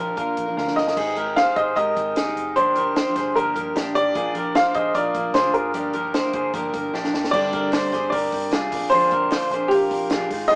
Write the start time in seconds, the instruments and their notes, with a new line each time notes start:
Already playing: picked electric bass A#1, steel-string acoustic guitar F3 A#3, clean electric guitar A#4
0.00 steel-string acoustic guitar D4 A#4, clean electric guitar G4
0.16 picked electric bass A#1, steel-string acoustic guitar F3 A#3 D4 A#4, clean electric guitar F4 A#4, kick, closed hi-hat
0.37 picked electric bass A#1, kick, closed hi-hat
0.46 steel-string acoustic guitar F3 A#3 D4 A#4
0.57 picked electric bass D2, clean electric guitar F4 A#4, snare
0.66 steel-string acoustic guitar F3 A#3 D4 A#4, snare
0.76 picked electric bass G1, upright piano D#5, glockenspiel D#6, snare
0.88 snare
0.96 picked electric bass G#1, steel-string acoustic guitar G#3 C4 D#4 G4, clean electric guitar D#4 G#4, kick, crash
1.16 steel-string acoustic guitar G#3 C4 D#4 G4, clean electric guitar G4 A#4, closed hi-hat
1.36 clean electric guitar G#4 C5, upright piano F5, glockenspiel F6, snare, closed hi-hat
1.45 steel-string acoustic guitar C4 D#4 G4
1.56 picked electric bass G#1, clean electric guitar G#4 C5, upright piano D#5, glockenspiel D#6, kick, closed hi-hat
1.75 picked electric bass G#1, steel-string acoustic guitar G#3 C4 D#4 G4, clean electric guitar G4 A#4, upright piano D#5, glockenspiel D#6, kick, closed hi-hat
1.96 picked electric bass G#1, steel-string acoustic guitar G#3 C4 D#4 G4, kick, closed hi-hat
2.16 picked electric bass C2, clean electric guitar D#4 G#4, snare, closed hi-hat
2.26 steel-string acoustic guitar C4 D#4 G4
2.36 picked electric bass F1, closed hi-hat
2.55 picked electric bass G1, steel-string acoustic guitar F3 A#3 D4 G4, clean electric guitar D4 G4, upright piano C5, glockenspiel C6, closed hi-hat
2.75 steel-string acoustic guitar F3 A#3 D4 G4, clean electric guitar G4 A#4, closed hi-hat
2.96 clean electric guitar G4 C5, snare, closed hi-hat
3.05 steel-string acoustic guitar F3 A#3 D4 G4
3.16 picked electric bass G1, clean electric guitar G#4 C5, kick, snare, closed hi-hat
3.34 picked electric bass G1, steel-string acoustic guitar F3 A#3 D4 G4, clean electric guitar G4 A#4, upright piano A#4, glockenspiel A#5, closed hi-hat
3.54 picked electric bass G1, steel-string acoustic guitar F3 A#3 D4 G4, kick, closed hi-hat
3.75 picked electric bass A#1, clean electric guitar D4 G4, snare, closed hi-hat
3.85 steel-string acoustic guitar F3 A#3 D4 G4
3.95 picked electric bass G#1, upright piano D5, glockenspiel D6, closed hi-hat
4.14 picked electric bass A#1, steel-string acoustic guitar F3 A#3 D4 A#4, clean electric guitar F4 G#4, kick, closed hi-hat
4.34 steel-string acoustic guitar F3 A#3 D4 A#4, clean electric guitar G4 A#4, closed hi-hat
4.55 clean electric guitar F4 C5, upright piano F5, glockenspiel F6, snare, closed hi-hat
4.64 steel-string acoustic guitar F3 A#3 D4 A#4
4.74 picked electric bass A#1, clean electric guitar G#4 C5, upright piano D#5, glockenspiel D#6, kick, closed hi-hat
4.93 picked electric bass A#1, steel-string acoustic guitar F3 A#3 D4 A#4, clean electric guitar F4 A#4, upright piano D5, glockenspiel D6, kick, closed hi-hat
5.14 picked electric bass A#1, steel-string acoustic guitar F3 A#3 D4 A#4, kick, closed hi-hat
5.34 picked electric bass D2, clean electric guitar F4 G#4, upright piano C5, glockenspiel C6, snare, closed hi-hat
5.43 steel-string acoustic guitar F3 A#3 D4 A#4
5.54 picked electric bass F1, upright piano A#4, glockenspiel A#5, closed hi-hat
5.73 picked electric bass G1, steel-string acoustic guitar F3 A#3 D4 A#4, clean electric guitar D4 G4, closed hi-hat
5.93 steel-string acoustic guitar F3 A#3 D4 A#4, clean electric guitar G4 A#4, closed hi-hat
6.14 clean electric guitar G4 C5, snare, closed hi-hat
6.23 steel-string acoustic guitar F3 A#3 D4 A#4
6.33 picked electric bass G1, clean electric guitar G#4 C5, kick, closed hi-hat
6.53 picked electric bass G1, steel-string acoustic guitar F3 A#3 D4 A#4, clean electric guitar G4 A#4, kick, closed hi-hat
6.73 picked electric bass G1, steel-string acoustic guitar F3 A#3 D4 A#4, kick, closed hi-hat
6.94 picked electric bass A#1, clean electric guitar D4 G4, snare
7.03 steel-string acoustic guitar F3 A#3 D4 A#4, snare
7.13 picked electric bass F1, snare
7.24 snare
7.31 picked electric bass G1, steel-string acoustic guitar G2 D3 G3 C4 D4 C5, clean electric guitar D4 G4, upright piano D5, glockenspiel D6, kick, crash
7.53 clean electric guitar G4 A#4, kick, hi-hat pedal, open hi-hat
7.73 clean electric guitar G4 C5, snare, clap, hi-hat pedal, open hi-hat
7.92 picked electric bass G1, steel-string acoustic guitar G3 C4 D4 C5, clean electric guitar G#4 C5, snare, hi-hat pedal, open hi-hat
8.10 picked electric bass G1, clean electric guitar G4 A#4, upright piano D5, glockenspiel D6, kick, hi-hat pedal, open hi-hat
8.31 picked electric bass G1, steel-string acoustic guitar G3 C4 D4 C5, kick, hi-hat pedal, open hi-hat
8.51 picked electric bass C2, steel-string acoustic guitar G3 C4 D4 C5, clean electric guitar F4 G#4, snare, clap, hi-hat pedal, open hi-hat
8.71 picked electric bass A#1, steel-string acoustic guitar F3 C4 D4 A#4, kick, hi-hat pedal, open hi-hat
8.90 steel-string acoustic guitar A#2 D3 F3 C4 D4 A#4, clean electric guitar F4 G#4, upright piano C5, glockenspiel C6, hi-hat pedal, open hi-hat
9.11 clean electric guitar G4 A#4, kick, hi-hat pedal, open hi-hat
9.31 clean electric guitar F4 C5, snare, clap, hi-hat pedal, open hi-hat
9.50 picked electric bass A#1, steel-string acoustic guitar F3 C4 D4 A#4, clean electric guitar G#4 C5, hi-hat pedal, open hi-hat
9.68 picked electric bass A#1, upright piano G4, clean electric guitar A#4, glockenspiel G5, kick, hi-hat pedal, open hi-hat
9.72 clean electric guitar F4
9.89 picked electric bass A#1, steel-string acoustic guitar F3 C4 D4 A#4, kick, hi-hat pedal, open hi-hat
10.10 picked electric bass A#1, steel-string acoustic guitar F3 C4 D4 A#4, clean electric guitar F4 G#4, snare, clap, hi-hat pedal, open hi-hat
10.30 picked electric bass G#1, steel-string acoustic guitar G#3 D#4 F4 C5, kick, hi-hat pedal, open hi-hat
10.48 steel-string acoustic guitar G#3 D#4 F4, clean electric guitar F4 G#4, upright piano D#5, glockenspiel D#6, hi-hat pedal, open hi-hat
10.52 steel-string acoustic guitar C5